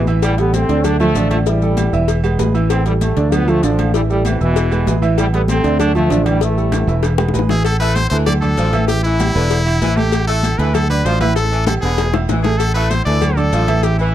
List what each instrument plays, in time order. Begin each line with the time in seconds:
Already playing: fingered electric bass A1
0.07 grand piano E3 E4 E5, high conga, low agogo, maracas
0.23 trombone section E3 G3, cowbell, high conga, low agogo, maracas
0.38 grand piano G3 G4 A4, trombone section G3 B3, cowbell, high conga, maracas
0.53 trombone section A3 C4, cowbell, high conga, low timbale, low agogo, maracas
0.69 fingered electric bass D2, grand piano D3 D4 D5, cowbell, high conga, maracas
0.84 trombone section A3 D4, cowbell, high conga, low conga, low agogo, maracas
1.00 grand piano F3 F4 A4, trombone section F3 A3, high conga, low conga, low agogo, maracas
1.15 fingered electric bass A1, grand piano D3 D4 D5, cowbell, high conga, low timbale, maracas
1.30 trombone section F3 A3, cowbell, high conga, low agogo, maracas
1.46 grand piano E3 E4 E5, trombone section E3 G3, cowbell, high conga, maracas
1.62 grand piano G3 G4 A4, high conga, maracas
1.77 cowbell, high conga, low timbale, low agogo, maracas
1.93 fingered electric bass E1, grand piano E3 E4 E5, maracas
2.08 cowbell, high conga, low agogo, maracas
2.24 grand piano G#3 G#4 B4, high conga, low agogo, maracas
2.39 fingered electric bass A1, grand piano G#3 G#4 B4, cowbell, high conga, low timbale, maracas
2.54 grand piano E3 E4 E5, low agogo, maracas
2.70 trombone section A3 C4, cowbell, high conga, low agogo, maracas
2.86 trombone section E3 G3, grand piano G3 G4 A4, cowbell, high conga, maracas
3.01 trombone section E3 A3, cowbell, high conga, low timbale, low agogo, maracas
3.16 fingered electric bass D2, grand piano D3 D4 D5, cowbell, high conga, maracas
3.32 trombone section F3 B3, cowbell, high conga, low conga, low agogo, maracas
3.48 grand piano F3 F4 A4, trombone section F3 A3, high conga, low agogo, maracas
3.63 fingered electric bass A1, grand piano D3 D4 D5, trombone section D3 F3, cowbell, low timbale, maracas
3.79 cowbell, high conga, low agogo, maracas
3.94 grand piano E3 E4 E5, trombone section E3 G3, cowbell, high conga, maracas
4.10 trombone section E3 G3, grand piano G3 G4 A4, maracas
4.25 trombone section C3 E3, cowbell, high conga, low timbale, low agogo, maracas
4.40 fingered electric bass E1, trombone section B2 E3, grand piano E3 E4 E5, high conga, maracas
4.56 cowbell, high conga, low agogo, maracas
4.71 grand piano G#3 G#4 B4, high conga, low agogo, maracas
4.87 fingered electric bass A1, grand piano G#3 G#4 B4, cowbell, high conga, low timbale, maracas
5.02 grand piano E3 E4 E5, low agogo, maracas
5.18 trombone section E3 G3, cowbell, high conga, low agogo, maracas
5.33 grand piano G3 G4 A4, trombone section G3 B3, cowbell, high conga, maracas
5.48 trombone section A3 C4, cowbell, high conga, low timbale, low agogo, maracas
5.64 fingered electric bass D2, grand piano D3 D4 D5, cowbell, maracas
5.79 trombone section A3 D4, cowbell, high conga, low conga, low agogo, maracas
5.95 grand piano F3 F4 A4, trombone section F3 A3, high conga, low conga, low agogo, maracas
6.10 fingered electric bass A1, grand piano D3 D4 D5, cowbell, low timbale, maracas
6.26 trombone section E3 G3, cowbell, high conga, low agogo, maracas
6.41 grand piano E3 E4 E5, trombone section E3 A3, cowbell, high conga, maracas
6.57 grand piano G3 G4 A4, high conga, maracas
6.72 cowbell, high conga, high timbale, low agogo, maracas
6.87 fingered electric bass E1, grand piano E3 E4 E5, low timbale, maracas
7.03 cowbell, high conga, high timbale, low agogo, maracas
7.18 grand piano G#3 G#4 B4, high bongo, high conga, low timbale, low agogo, maracas
7.29 high bongo
7.34 fingered electric bass A1, grand piano G#3 G#4 B4, cowbell, high conga, low timbale, maracas
7.39 low bongo
7.49 grand piano E3 E4 E5, trumpet G#4, low bongo, low timbale, low agogo, maracas
7.64 trumpet A4, cowbell, high conga, low agogo, maracas
7.80 saxophone section A3, grand piano E4 E5 E6, trumpet B4, cowbell, high conga, maracas
7.95 trumpet C5, cowbell, high conga, low timbale, low agogo, maracas
8.10 fingered electric bass D2, saxophone section E3, grand piano A3 A4 A5, trumpet C5, cowbell, high conga, maracas
8.26 trumpet D5, cowbell, high conga, low conga, low agogo, maracas
8.41 grand piano D4 D5 D6, trumpet A4, high conga, low conga, low agogo, maracas
8.57 fingered electric bass A1, saxophone section F3, cowbell, high conga, low timbale, maracas
8.73 grand piano E3 E4 E5, cowbell, high conga, low agogo, maracas
8.88 grand piano E3 E4 E5, trumpet G4, cowbell, maracas
9.03 saxophone section E3, trumpet E4, high conga, maracas
9.19 grand piano G3 G4 G5, cowbell, high conga, low timbale, low agogo, maracas
9.35 fingered electric bass E1, saxophone section D3, grand piano B3 B4 B5, maracas
9.50 cowbell, high conga, low agogo, maracas
9.66 grand piano E4 E5 E6, high conga, low agogo, maracas
9.81 fingered electric bass A1, saxophone section E3, cowbell, high conga, low timbale, maracas
9.96 grand piano A3 A4 A5, trumpet G4, high conga, low agogo, maracas
10.12 cowbell, high conga, low agogo, maracas
10.27 saxophone section A3, grand piano E4 E5 E6, trumpet A4, cowbell, high conga, maracas
10.43 cowbell, high conga, low timbale, low agogo, maracas
10.58 fingered electric bass D2, saxophone section E3, grand piano A3 A4 A5, trumpet B4, cowbell, high conga, maracas
10.74 trumpet A4, cowbell, high conga, low conga, low agogo, maracas
10.89 grand piano D4 D5 D6, trumpet B4, high conga, low conga, low agogo, maracas
11.05 fingered electric bass A1, saxophone section F3, trumpet C5, cowbell, high conga, low timbale, maracas
11.20 grand piano E3 E4 E5, trumpet B4, cowbell, high conga, low agogo, maracas
11.35 grand piano E3 E4 E5, trumpet A4, cowbell, maracas
11.52 saxophone section E3, maracas
11.66 grand piano G3 G4 G5, trumpet A4, cowbell, high bongo, high conga, high timbale, low agogo, maracas
11.81 fingered electric bass E1, saxophone section D3, grand piano B3 B4 B5, trumpet G#4, high conga, high timbale, maracas
11.98 cowbell, high bongo, high conga, low timbale, low agogo, maracas
12.13 grand piano E4 E5 E6, low bongo, high conga, low timbale, low agogo, maracas
12.29 fingered electric bass A1, saxophone section E3, cowbell, low bongo, high conga, low timbale, maracas
12.43 grand piano A3 A4 A5, trumpet G#4, low bongo, low timbale, low agogo, maracas
12.58 trumpet A4, cowbell, high conga, low agogo, maracas
12.74 saxophone section A3, grand piano E4 E5 E6, trumpet B4, cowbell, high conga, maracas
12.89 trumpet C5, cowbell, high conga, low timbale, low agogo, maracas
13.05 fingered electric bass D2, saxophone section E3, grand piano A3 A4 A5, trumpet D5, cowbell, high conga, maracas
13.22 cowbell, high conga, low conga, low agogo, maracas
13.36 grand piano D4 D5 D6, trumpet A4, high conga, low conga, low agogo, maracas
13.53 fingered electric bass A1, saxophone section F3, cowbell, low timbale, maracas
13.68 grand piano E3 E4 E5, cowbell, high conga, low agogo, maracas
13.83 grand piano E3 E4 E5, trumpet G4, cowbell, high conga, maracas
13.99 saxophone section E3, trumpet E4, high conga, maracas